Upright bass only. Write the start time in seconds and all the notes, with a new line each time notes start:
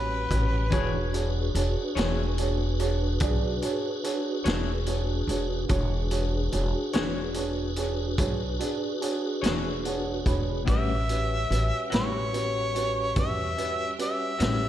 Already playing: A1
0.31 A1
0.73 E1
1.55 E1
1.96 E1
3.21 B1
4.45 E1
5.27 E1
5.70 E1
6.53 E1
6.94 E1
8.19 B1
9.43 E1
10.26 E1
10.68 A1
11.51 A1
11.92 A1
13.16 E2
14.40 A1